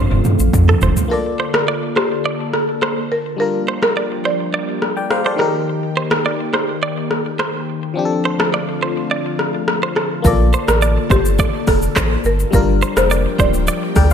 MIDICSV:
0, 0, Header, 1, 7, 480
1, 0, Start_track
1, 0, Key_signature, -2, "major"
1, 0, Tempo, 571429
1, 928, Time_signature, 4, 2, 24, 8
1, 11873, End_track
2, 0, Start_track
2, 0, Title_t, "Clean electric guitar"
2, 0, Program_c, 0, 27
2, 0, Note_on_c, 0, 72, 85
2, 143, Note_off_c, 0, 72, 0
2, 580, Note_on_c, 0, 69, 83
2, 660, Note_off_c, 0, 69, 0
2, 696, Note_on_c, 0, 72, 74
2, 782, Note_off_c, 0, 72, 0
2, 1174, Note_on_c, 0, 72, 75
2, 1261, Note_off_c, 0, 72, 0
2, 1298, Note_on_c, 0, 70, 74
2, 1379, Note_off_c, 0, 70, 0
2, 1413, Note_on_c, 0, 74, 83
2, 1501, Note_off_c, 0, 74, 0
2, 1655, Note_on_c, 0, 72, 68
2, 1742, Note_off_c, 0, 72, 0
2, 1894, Note_on_c, 0, 74, 75
2, 2064, Note_off_c, 0, 74, 0
2, 2375, Note_on_c, 0, 72, 83
2, 2544, Note_off_c, 0, 72, 0
2, 3095, Note_on_c, 0, 72, 79
2, 3181, Note_off_c, 0, 72, 0
2, 3218, Note_on_c, 0, 70, 73
2, 3299, Note_off_c, 0, 70, 0
2, 3334, Note_on_c, 0, 74, 85
2, 3421, Note_off_c, 0, 74, 0
2, 3573, Note_on_c, 0, 72, 74
2, 3660, Note_off_c, 0, 72, 0
2, 3814, Note_on_c, 0, 74, 78
2, 3983, Note_off_c, 0, 74, 0
2, 4419, Note_on_c, 0, 72, 77
2, 4499, Note_off_c, 0, 72, 0
2, 4535, Note_on_c, 0, 70, 73
2, 4622, Note_off_c, 0, 70, 0
2, 5015, Note_on_c, 0, 72, 75
2, 5102, Note_off_c, 0, 72, 0
2, 5140, Note_on_c, 0, 70, 72
2, 5220, Note_off_c, 0, 70, 0
2, 5256, Note_on_c, 0, 74, 83
2, 5343, Note_off_c, 0, 74, 0
2, 5494, Note_on_c, 0, 72, 68
2, 5581, Note_off_c, 0, 72, 0
2, 5735, Note_on_c, 0, 74, 78
2, 5904, Note_off_c, 0, 74, 0
2, 6214, Note_on_c, 0, 72, 80
2, 6383, Note_off_c, 0, 72, 0
2, 6933, Note_on_c, 0, 72, 78
2, 7021, Note_off_c, 0, 72, 0
2, 7058, Note_on_c, 0, 69, 73
2, 7139, Note_off_c, 0, 69, 0
2, 7173, Note_on_c, 0, 74, 85
2, 7260, Note_off_c, 0, 74, 0
2, 7414, Note_on_c, 0, 72, 72
2, 7501, Note_off_c, 0, 72, 0
2, 7654, Note_on_c, 0, 74, 80
2, 7823, Note_off_c, 0, 74, 0
2, 8258, Note_on_c, 0, 72, 77
2, 8339, Note_off_c, 0, 72, 0
2, 8373, Note_on_c, 0, 69, 67
2, 8460, Note_off_c, 0, 69, 0
2, 8853, Note_on_c, 0, 72, 81
2, 8941, Note_off_c, 0, 72, 0
2, 8978, Note_on_c, 0, 70, 84
2, 9058, Note_off_c, 0, 70, 0
2, 9092, Note_on_c, 0, 74, 90
2, 9180, Note_off_c, 0, 74, 0
2, 9333, Note_on_c, 0, 72, 74
2, 9421, Note_off_c, 0, 72, 0
2, 9574, Note_on_c, 0, 74, 87
2, 9743, Note_off_c, 0, 74, 0
2, 10053, Note_on_c, 0, 72, 87
2, 10223, Note_off_c, 0, 72, 0
2, 10773, Note_on_c, 0, 72, 87
2, 10861, Note_off_c, 0, 72, 0
2, 10899, Note_on_c, 0, 70, 84
2, 10979, Note_off_c, 0, 70, 0
2, 11014, Note_on_c, 0, 74, 90
2, 11101, Note_off_c, 0, 74, 0
2, 11253, Note_on_c, 0, 72, 84
2, 11341, Note_off_c, 0, 72, 0
2, 11494, Note_on_c, 0, 74, 91
2, 11663, Note_off_c, 0, 74, 0
2, 11873, End_track
3, 0, Start_track
3, 0, Title_t, "Marimba"
3, 0, Program_c, 1, 12
3, 936, Note_on_c, 1, 70, 81
3, 1039, Note_off_c, 1, 70, 0
3, 1302, Note_on_c, 1, 70, 67
3, 1396, Note_off_c, 1, 70, 0
3, 1660, Note_on_c, 1, 67, 74
3, 1761, Note_off_c, 1, 67, 0
3, 2137, Note_on_c, 1, 69, 70
3, 2239, Note_off_c, 1, 69, 0
3, 2618, Note_on_c, 1, 70, 82
3, 2720, Note_off_c, 1, 70, 0
3, 2856, Note_on_c, 1, 70, 87
3, 2959, Note_off_c, 1, 70, 0
3, 3220, Note_on_c, 1, 70, 81
3, 3315, Note_off_c, 1, 70, 0
3, 3578, Note_on_c, 1, 74, 74
3, 3680, Note_off_c, 1, 74, 0
3, 8616, Note_on_c, 1, 70, 88
3, 8719, Note_off_c, 1, 70, 0
3, 8983, Note_on_c, 1, 70, 72
3, 9077, Note_off_c, 1, 70, 0
3, 9338, Note_on_c, 1, 67, 81
3, 9440, Note_off_c, 1, 67, 0
3, 9817, Note_on_c, 1, 69, 79
3, 9919, Note_off_c, 1, 69, 0
3, 10299, Note_on_c, 1, 70, 86
3, 10400, Note_off_c, 1, 70, 0
3, 10538, Note_on_c, 1, 70, 94
3, 10640, Note_off_c, 1, 70, 0
3, 10903, Note_on_c, 1, 72, 85
3, 10997, Note_off_c, 1, 72, 0
3, 11258, Note_on_c, 1, 74, 80
3, 11360, Note_off_c, 1, 74, 0
3, 11873, End_track
4, 0, Start_track
4, 0, Title_t, "FM electric piano"
4, 0, Program_c, 2, 5
4, 0, Control_c, 2, 64, 127
4, 0, Note_on_c, 2, 53, 86
4, 0, Note_on_c, 2, 60, 77
4, 0, Note_on_c, 2, 62, 76
4, 0, Note_on_c, 2, 69, 89
4, 882, Note_off_c, 2, 53, 0
4, 890, Note_off_c, 2, 60, 0
4, 897, Note_off_c, 2, 62, 0
4, 904, Note_off_c, 2, 69, 0
4, 908, Note_on_c, 2, 58, 65
4, 922, Note_on_c, 2, 65, 60
4, 936, Note_on_c, 2, 69, 57
4, 939, Control_c, 2, 64, 0
4, 950, Note_on_c, 2, 74, 68
4, 1098, Control_c, 2, 64, 127
4, 2804, Note_off_c, 2, 58, 0
4, 2812, Note_off_c, 2, 65, 0
4, 2818, Note_off_c, 2, 69, 0
4, 2826, Note_off_c, 2, 74, 0
4, 2826, Note_on_c, 2, 55, 61
4, 2840, Note_on_c, 2, 62, 57
4, 2854, Note_on_c, 2, 65, 59
4, 2859, Control_c, 2, 64, 0
4, 2869, Note_on_c, 2, 70, 67
4, 3000, Control_c, 2, 64, 127
4, 3799, Note_off_c, 2, 70, 0
4, 4171, Note_on_c, 2, 79, 65
4, 4175, Note_on_c, 2, 74, 55
4, 4282, Note_off_c, 2, 79, 0
4, 4284, Note_off_c, 2, 74, 0
4, 4286, Note_on_c, 2, 77, 70
4, 4292, Note_on_c, 2, 72, 58
4, 4406, Note_off_c, 2, 77, 0
4, 4409, Note_off_c, 2, 72, 0
4, 4411, Note_on_c, 2, 74, 66
4, 4417, Note_on_c, 2, 69, 54
4, 4484, Note_off_c, 2, 55, 0
4, 4490, Note_off_c, 2, 62, 0
4, 4498, Note_off_c, 2, 65, 0
4, 4506, Note_on_c, 2, 51, 72
4, 4520, Note_on_c, 2, 63, 69
4, 4533, Note_on_c, 2, 67, 65
4, 4540, Control_c, 2, 64, 0
4, 4548, Note_on_c, 2, 70, 76
4, 4640, Note_off_c, 2, 74, 0
4, 4643, Note_off_c, 2, 69, 0
4, 4666, Control_c, 2, 64, 127
4, 6403, Note_off_c, 2, 51, 0
4, 6411, Note_off_c, 2, 63, 0
4, 6417, Note_off_c, 2, 67, 0
4, 6424, Note_off_c, 2, 70, 0
4, 6668, Note_on_c, 2, 53, 74
4, 6682, Note_on_c, 2, 60, 70
4, 6695, Note_on_c, 2, 62, 70
4, 6700, Control_c, 2, 64, 0
4, 6710, Note_on_c, 2, 67, 70
4, 6756, Note_off_c, 2, 67, 0
4, 6764, Note_on_c, 2, 69, 83
4, 6861, Control_c, 2, 64, 127
4, 8565, Note_off_c, 2, 53, 0
4, 8571, Note_off_c, 2, 60, 0
4, 8578, Note_off_c, 2, 62, 0
4, 8587, Note_on_c, 2, 58, 70
4, 8601, Note_on_c, 2, 65, 64
4, 8604, Note_off_c, 2, 69, 0
4, 8614, Note_on_c, 2, 69, 62
4, 8620, Control_c, 2, 64, 0
4, 8629, Note_on_c, 2, 74, 75
4, 8762, Control_c, 2, 64, 127
4, 10484, Note_off_c, 2, 58, 0
4, 10491, Note_off_c, 2, 65, 0
4, 10498, Note_off_c, 2, 69, 0
4, 10505, Note_off_c, 2, 74, 0
4, 10505, Note_on_c, 2, 55, 70
4, 10518, Note_on_c, 2, 62, 65
4, 10533, Note_on_c, 2, 65, 64
4, 10538, Control_c, 2, 64, 0
4, 10548, Note_on_c, 2, 70, 81
4, 10686, Control_c, 2, 64, 127
4, 11707, Note_off_c, 2, 65, 0
4, 11714, Note_off_c, 2, 70, 0
4, 11729, Note_on_c, 2, 79, 71
4, 11734, Note_on_c, 2, 74, 60
4, 11847, Note_off_c, 2, 79, 0
4, 11850, Note_off_c, 2, 74, 0
4, 11873, Note_off_c, 2, 55, 0
4, 11873, Note_off_c, 2, 62, 0
4, 11873, End_track
5, 0, Start_track
5, 0, Title_t, "Analog synth pad"
5, 0, Program_c, 3, 89
5, 0, Note_on_c, 3, 50, 78
5, 0, Note_on_c, 3, 57, 76
5, 0, Note_on_c, 3, 65, 93
5, 910, Note_off_c, 3, 50, 0
5, 910, Note_off_c, 3, 57, 0
5, 910, Note_off_c, 3, 65, 0
5, 925, Note_on_c, 3, 69, 86
5, 927, Note_on_c, 3, 50, 81
5, 927, Note_on_c, 3, 58, 72
5, 2828, Note_off_c, 3, 50, 0
5, 2828, Note_off_c, 3, 58, 0
5, 2828, Note_off_c, 3, 69, 0
5, 2844, Note_on_c, 3, 53, 77
5, 2845, Note_on_c, 3, 58, 73
5, 2846, Note_on_c, 3, 67, 89
5, 4509, Note_off_c, 3, 53, 0
5, 4510, Note_off_c, 3, 58, 0
5, 4531, Note_on_c, 3, 51, 77
5, 4532, Note_on_c, 3, 58, 70
5, 6653, Note_off_c, 3, 67, 0
5, 6668, Note_off_c, 3, 51, 0
5, 6669, Note_off_c, 3, 58, 0
5, 6688, Note_on_c, 3, 50, 83
5, 6688, Note_on_c, 3, 57, 73
5, 6689, Note_on_c, 3, 65, 89
5, 8589, Note_off_c, 3, 50, 0
5, 8589, Note_off_c, 3, 57, 0
5, 8589, Note_off_c, 3, 65, 0
5, 8609, Note_on_c, 3, 50, 87
5, 8610, Note_on_c, 3, 58, 74
5, 8610, Note_on_c, 3, 69, 92
5, 10509, Note_off_c, 3, 50, 0
5, 10510, Note_off_c, 3, 69, 0
5, 10528, Note_on_c, 3, 53, 80
5, 10530, Note_on_c, 3, 67, 92
5, 11873, Note_off_c, 3, 53, 0
5, 11873, Note_off_c, 3, 58, 0
5, 11873, Note_off_c, 3, 67, 0
5, 11873, End_track
6, 0, Start_track
6, 0, Title_t, "Sub bass"
6, 0, Program_c, 4, 38
6, 91, Note_on_c, 4, 29, 91
6, 173, Note_off_c, 4, 29, 0
6, 331, Note_on_c, 4, 33, 91
6, 414, Note_off_c, 4, 33, 0
6, 450, Note_on_c, 4, 41, 111
6, 619, Note_off_c, 4, 41, 0
6, 686, Note_on_c, 4, 29, 98
6, 775, Note_off_c, 4, 29, 0
6, 8607, Note_on_c, 4, 34, 117
6, 8866, Note_off_c, 4, 34, 0
6, 8972, Note_on_c, 4, 33, 90
6, 9224, Note_off_c, 4, 33, 0
6, 9326, Note_on_c, 4, 31, 93
6, 9585, Note_off_c, 4, 31, 0
6, 9807, Note_on_c, 4, 29, 96
6, 9978, Note_off_c, 4, 29, 0
6, 10049, Note_on_c, 4, 33, 95
6, 10219, Note_off_c, 4, 33, 0
6, 10286, Note_on_c, 4, 31, 94
6, 10457, Note_off_c, 4, 31, 0
6, 10527, Note_on_c, 4, 31, 113
6, 10786, Note_off_c, 4, 31, 0
6, 10892, Note_on_c, 4, 29, 104
6, 11144, Note_off_c, 4, 29, 0
6, 11246, Note_on_c, 4, 26, 104
6, 11506, Note_off_c, 4, 26, 0
6, 11727, Note_on_c, 4, 38, 94
6, 11873, Note_off_c, 4, 38, 0
6, 11873, End_track
7, 0, Start_track
7, 0, Title_t, "Drums"
7, 94, Note_on_c, 9, 45, 82
7, 178, Note_off_c, 9, 45, 0
7, 207, Note_on_c, 9, 82, 61
7, 210, Note_on_c, 9, 45, 103
7, 291, Note_off_c, 9, 82, 0
7, 294, Note_off_c, 9, 45, 0
7, 330, Note_on_c, 9, 82, 85
7, 414, Note_off_c, 9, 82, 0
7, 449, Note_on_c, 9, 36, 93
7, 449, Note_on_c, 9, 43, 108
7, 453, Note_on_c, 9, 82, 95
7, 533, Note_off_c, 9, 36, 0
7, 533, Note_off_c, 9, 43, 0
7, 537, Note_off_c, 9, 82, 0
7, 574, Note_on_c, 9, 43, 94
7, 658, Note_off_c, 9, 43, 0
7, 684, Note_on_c, 9, 82, 57
7, 689, Note_on_c, 9, 43, 117
7, 768, Note_off_c, 9, 82, 0
7, 773, Note_off_c, 9, 43, 0
7, 813, Note_on_c, 9, 43, 99
7, 813, Note_on_c, 9, 82, 84
7, 897, Note_off_c, 9, 43, 0
7, 897, Note_off_c, 9, 82, 0
7, 1294, Note_on_c, 9, 37, 115
7, 1378, Note_off_c, 9, 37, 0
7, 1649, Note_on_c, 9, 37, 95
7, 1733, Note_off_c, 9, 37, 0
7, 2129, Note_on_c, 9, 37, 84
7, 2213, Note_off_c, 9, 37, 0
7, 2369, Note_on_c, 9, 37, 95
7, 2453, Note_off_c, 9, 37, 0
7, 3214, Note_on_c, 9, 37, 114
7, 3298, Note_off_c, 9, 37, 0
7, 4049, Note_on_c, 9, 37, 84
7, 4133, Note_off_c, 9, 37, 0
7, 4289, Note_on_c, 9, 37, 99
7, 4373, Note_off_c, 9, 37, 0
7, 4529, Note_on_c, 9, 37, 91
7, 4613, Note_off_c, 9, 37, 0
7, 5133, Note_on_c, 9, 37, 116
7, 5217, Note_off_c, 9, 37, 0
7, 5489, Note_on_c, 9, 37, 94
7, 5573, Note_off_c, 9, 37, 0
7, 5970, Note_on_c, 9, 37, 83
7, 6054, Note_off_c, 9, 37, 0
7, 6210, Note_on_c, 9, 37, 95
7, 6294, Note_off_c, 9, 37, 0
7, 7053, Note_on_c, 9, 37, 117
7, 7137, Note_off_c, 9, 37, 0
7, 7889, Note_on_c, 9, 37, 84
7, 7973, Note_off_c, 9, 37, 0
7, 8130, Note_on_c, 9, 37, 99
7, 8214, Note_off_c, 9, 37, 0
7, 8368, Note_on_c, 9, 37, 92
7, 8452, Note_off_c, 9, 37, 0
7, 8607, Note_on_c, 9, 36, 116
7, 8607, Note_on_c, 9, 82, 79
7, 8691, Note_off_c, 9, 36, 0
7, 8691, Note_off_c, 9, 82, 0
7, 8848, Note_on_c, 9, 82, 62
7, 8932, Note_off_c, 9, 82, 0
7, 8974, Note_on_c, 9, 37, 127
7, 8974, Note_on_c, 9, 82, 76
7, 9058, Note_off_c, 9, 37, 0
7, 9058, Note_off_c, 9, 82, 0
7, 9087, Note_on_c, 9, 82, 74
7, 9171, Note_off_c, 9, 82, 0
7, 9326, Note_on_c, 9, 36, 96
7, 9330, Note_on_c, 9, 82, 59
7, 9410, Note_off_c, 9, 36, 0
7, 9414, Note_off_c, 9, 82, 0
7, 9452, Note_on_c, 9, 82, 81
7, 9536, Note_off_c, 9, 82, 0
7, 9565, Note_on_c, 9, 82, 87
7, 9568, Note_on_c, 9, 36, 98
7, 9649, Note_off_c, 9, 82, 0
7, 9652, Note_off_c, 9, 36, 0
7, 9805, Note_on_c, 9, 46, 60
7, 9805, Note_on_c, 9, 82, 62
7, 9807, Note_on_c, 9, 36, 96
7, 9810, Note_on_c, 9, 37, 90
7, 9889, Note_off_c, 9, 46, 0
7, 9889, Note_off_c, 9, 82, 0
7, 9891, Note_off_c, 9, 36, 0
7, 9894, Note_off_c, 9, 37, 0
7, 9929, Note_on_c, 9, 82, 81
7, 10013, Note_off_c, 9, 82, 0
7, 10049, Note_on_c, 9, 36, 100
7, 10049, Note_on_c, 9, 37, 106
7, 10049, Note_on_c, 9, 39, 108
7, 10051, Note_on_c, 9, 82, 93
7, 10133, Note_off_c, 9, 36, 0
7, 10133, Note_off_c, 9, 37, 0
7, 10133, Note_off_c, 9, 39, 0
7, 10135, Note_off_c, 9, 82, 0
7, 10283, Note_on_c, 9, 82, 57
7, 10367, Note_off_c, 9, 82, 0
7, 10413, Note_on_c, 9, 82, 80
7, 10497, Note_off_c, 9, 82, 0
7, 10526, Note_on_c, 9, 82, 81
7, 10527, Note_on_c, 9, 36, 112
7, 10610, Note_off_c, 9, 82, 0
7, 10611, Note_off_c, 9, 36, 0
7, 10768, Note_on_c, 9, 82, 61
7, 10852, Note_off_c, 9, 82, 0
7, 10893, Note_on_c, 9, 37, 127
7, 10894, Note_on_c, 9, 82, 80
7, 10977, Note_off_c, 9, 37, 0
7, 10978, Note_off_c, 9, 82, 0
7, 11008, Note_on_c, 9, 82, 76
7, 11092, Note_off_c, 9, 82, 0
7, 11247, Note_on_c, 9, 36, 95
7, 11250, Note_on_c, 9, 82, 61
7, 11331, Note_off_c, 9, 36, 0
7, 11334, Note_off_c, 9, 82, 0
7, 11372, Note_on_c, 9, 82, 79
7, 11456, Note_off_c, 9, 82, 0
7, 11485, Note_on_c, 9, 82, 88
7, 11569, Note_off_c, 9, 82, 0
7, 11724, Note_on_c, 9, 46, 61
7, 11724, Note_on_c, 9, 82, 60
7, 11727, Note_on_c, 9, 36, 97
7, 11729, Note_on_c, 9, 37, 90
7, 11808, Note_off_c, 9, 46, 0
7, 11808, Note_off_c, 9, 82, 0
7, 11811, Note_off_c, 9, 36, 0
7, 11813, Note_off_c, 9, 37, 0
7, 11848, Note_on_c, 9, 82, 82
7, 11873, Note_off_c, 9, 82, 0
7, 11873, End_track
0, 0, End_of_file